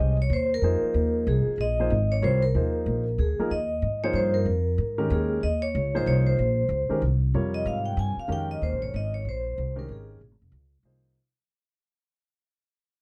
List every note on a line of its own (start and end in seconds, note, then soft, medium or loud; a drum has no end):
0.00 0.29 C2 medium
0.00 0.16 G#3 medium
0.00 0.16 C#4 medium
0.00 0.16 G4 medium
0.00 0.16 C5 medium
0.00 0.16 D#5 medium
0.00 0.16 D#5 loud
0.22 0.32 C#5 medium
0.30 0.61 D#2 medium
0.30 0.51 C5 medium
0.54 1.25 A#4 medium
0.62 0.81 F2 medium
0.62 1.52 F3 medium
0.62 1.52 A#3 medium
0.62 1.52 D#4 medium
0.62 1.52 G#4 medium
0.62 1.52 C5 medium
0.82 muted upright bass stroke soft
0.94 1.26 D#2 medium
1.27 1.45 C2 medium
1.27 1.61 G#4 medium
1.46 muted upright bass stroke soft
1.58 1.90 A#1 medium
1.58 2.13 D#5 loud
1.80 1.90 F3 medium
1.80 1.91 A#3 medium
1.80 1.90 D#4 medium
1.80 1.91 G#4 medium
1.80 1.91 C5 medium
1.90 2.22 G#1 medium
2.12 2.24 C#5 medium
2.22 2.54 C2 medium
2.22 2.41 G3 medium
2.22 2.40 C4 medium
2.22 2.40 F4 medium
2.22 2.41 A#4 medium
2.22 2.42 C5 medium
2.22 2.40 C#5 medium
2.43 3.21 A#4 medium
2.55 2.85 D#2 medium
2.55 3.03 F3 medium
2.55 3.03 A#3 soft
2.55 3.03 D#4 medium
2.55 3.03 G#4 soft
2.55 3.03 C5 medium
2.86 3.18 A#1 medium
3.18 3.37 D2 medium
3.18 3.49 G#4 medium
3.39 3.50 F3 medium
3.39 3.50 A#3 medium
3.39 3.50 D#4 medium
3.39 3.51 G#4 medium
3.39 3.51 A#4 medium
3.39 muted upright bass stroke soft
3.51 3.82 D#2 medium
3.51 3.99 D#5 medium
3.82 4.13 G#2 medium
4.03 4.45 F3 medium
4.03 4.45 A#3 medium
4.03 4.45 D#4 medium
4.03 4.45 G#4 medium
4.03 4.45 C5 medium
4.03 4.15 C#5 medium
4.13 4.45 G2 medium
4.13 4.33 C5 medium
4.34 5.13 A#4 medium
4.45 4.77 F2 medium
4.78 5.09 G#2 medium
4.98 5.40 D#3 medium
4.98 5.40 G#3 medium
4.98 5.40 C#4 medium
4.98 5.40 G4 medium
4.98 5.40 A#4 medium
5.10 5.41 D#2 medium
5.10 5.41 G#4 medium
5.43 5.74 D#2 medium
5.43 5.52 D#5 medium
5.62 5.95 C#5 medium
5.75 6.05 C#2 medium
5.94 6.36 F3 medium
5.94 6.36 A#3 medium
5.94 6.36 D#4 medium
5.94 6.36 G#4 medium
5.94 6.36 C5 medium
5.94 6.01 C5 medium
6.06 6.37 C2 medium
6.06 6.16 C#5 medium
6.26 6.98 C5 medium
6.39 6.68 A#1 medium
6.69 6.88 C#2 medium
6.89 7.01 D#3 medium
6.89 7.00 G#3 medium
6.89 7.01 C#4 medium
6.89 7.01 G4 medium
6.89 7.01 A#4 medium
6.89 muted upright bass stroke soft
7.02 7.33 C2 medium
7.34 7.65 F2 medium
7.34 8.22 C3 medium
7.34 8.22 G3 medium
7.34 8.22 F4 medium
7.34 8.23 A#4 medium
7.34 8.22 C#5 medium
7.54 7.66 D#5 medium
7.65 7.96 G#2 medium
7.65 7.85 F5 medium
7.86 7.97 G5 medium
7.97 8.15 G2 medium
7.97 8.17 G#5 medium
8.17 8.30 F5 medium
8.17 muted upright bass stroke soft
8.28 8.60 F2 medium
8.28 9.17 D#3 medium
8.28 9.17 G#3 medium
8.28 9.17 C#4 medium
8.28 9.17 G4 medium
8.28 9.17 A#4 medium
8.32 8.50 G5 medium
8.51 8.62 D#5 medium
8.62 8.73 D#2 medium
8.62 8.81 C5 medium
8.72 8.82 A#1 medium
8.82 8.92 G#1 medium
8.82 8.93 C#5 medium
8.94 9.24 G#1 medium
8.94 9.14 D#5 medium
9.14 9.25 C#5 medium
9.25 9.56 A#1 medium
9.29 9.75 C5 medium
9.58 9.88 C2 medium
9.76 10.18 D#3 medium
9.76 10.18 G#3 medium
9.76 10.18 C#4 medium
9.76 10.18 G4 medium
9.76 10.18 A#4 medium
9.76 9.89 A#4 medium
9.89 10.19 G#1 medium
9.89 10.20 G#4 medium
10.21 10.31 A#1 medium
10.31 10.41 G#1 medium
10.42 10.51 F1 medium
10.52 10.82 C#2 medium
10.83 11.14 C2 medium
10.83 11.16 F3 medium
10.83 11.16 A#3 soft
10.83 11.16 D#4 soft
10.83 11.16 G#4 soft
10.83 11.17 C5 medium